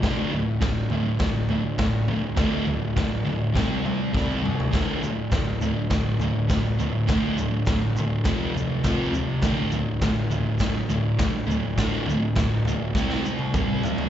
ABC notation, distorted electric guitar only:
X:1
M:4/4
L:1/8
Q:1/4=102
K:Dm
V:1 name="Distorted electric guitar" clef=bass
[D,,A,,D,] [D,,A,,] [D,,A,,] [D,,A,,] [D,,A,,] [D,,A,,] [D,,A,,] [D,,A,,] | [D,,A,,D,] [D,,A,,] [D,,A,,] [D,,A,,] [C,G,C] [C,G,] [C,G,C] [C,G,] | [D,,A,,D,] [D,,A,,] [D,,A,,] [D,,A,,] [D,,A,,] [D,,A,,] [D,,A,,] [D,,A,,] | [D,,A,,D,] [D,,A,,] [D,,A,,] [D,,A,,] [F,,C,F,] [F,,C,] [F,,C,F,] [F,,C,] |
[D,,A,,D,] [D,,A,,] [D,,A,,] [D,,A,,] [D,,A,,] [D,,A,,] [D,,A,,] [D,,A,,] | [D,,A,,D,] [D,,A,,] [D,,A,,] [D,,A,,] [C,G,C] [C,G,] [C,G,C] [C,G,] |]